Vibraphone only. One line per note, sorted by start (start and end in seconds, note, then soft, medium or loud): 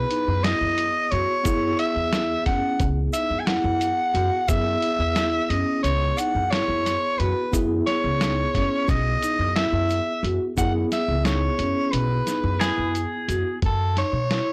0.10 0.28 D#4 medium
0.45 0.80 E4 medium
1.12 1.30 F#4 medium
1.46 1.81 E4 medium
2.13 2.31 E4 medium
2.47 2.82 C#4 medium
3.14 3.32 D#4 medium
3.47 3.83 E4 medium
4.14 4.32 F#4 medium
4.49 4.84 E4 medium
5.16 5.34 E4 medium
5.50 5.85 C#4 medium
6.18 6.36 D#4 medium
6.52 6.88 E4 medium
7.20 7.37 F#4 medium
7.53 7.89 E4 medium
8.21 8.38 D#4 medium
8.55 8.90 C#4 medium
9.23 9.40 D#4 medium
9.56 9.91 E4 medium
10.24 10.42 F#4 medium
10.57 10.93 E4 medium
11.26 11.43 D#4 medium
11.59 11.94 C#4 medium
12.27 12.44 D#4 medium
12.61 12.96 E4 medium
13.28 13.46 F#4 medium
13.97 14.14 D#4 medium
14.31 14.53 E4 medium